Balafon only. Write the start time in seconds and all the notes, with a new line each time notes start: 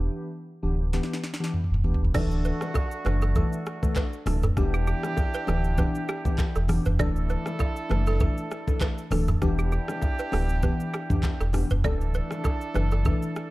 2.15 D5
2.45 B4
2.75 A4
3.06 B4
3.22 A4
3.36 A4
3.97 B4
4.27 A4
4.44 A4
4.74 G4
4.88 G4
5.35 B4
5.48 A4
5.79 B4
6.09 G4
6.56 A4
6.86 B4
7.00 D5
7.30 B4
7.60 A4
7.91 B4
8.07 A4
8.21 A4
8.82 B4
9.12 A4
9.29 A4
9.59 G4
9.72 G4
10.19 B4
10.33 A4
10.63 B4
10.94 G4
11.41 A4
11.71 B4
11.85 D5
12.15 B4
12.45 A4
12.75 B4
12.92 A4
13.06 A4